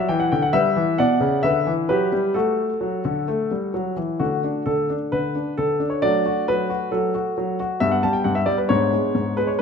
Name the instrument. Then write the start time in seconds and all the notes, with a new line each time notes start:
grand piano
0.09 E3 G5
0.20 F#5
0.32 D3 G5
0.42 F#5
0.53 G3 B4 E5
0.76 E3
0.98 B2 D5 F#5
1.21 C#3
1.43 D3 B4 E5
1.67 E3
1.89 F#3 G4 B4
2.12 G3
2.34 A3 F#4 A4
2.81 F#3
3.05 D3
3.28 A3
3.51 G3
3.74 F#3
3.96 E3
4.20 D3 A3 D4 F#4
4.44 D4
4.66 D3 A4
4.90 D4
5.12 D3 B4
5.35 D4
5.58 D3 A4
5.80 D4
5.90 C#5
6.02 F#3 A3 D4 D5
6.26 F#4
6.48 F#3 B4
6.70 F#4
6.92 F#3 A4
7.15 F#4
7.38 F#3
7.60 F#4
7.80 G2 B3 E5
7.91 F#5
8.03 G3 A5
8.13 G5
8.24 G2 F#5
8.35 E5
8.46 G3 D5
8.58 B4
8.69 G#2 B3 D4 C#5
8.93 G#3
9.15 G#2
9.37 G#3 B4
9.47 C#5
9.59 B4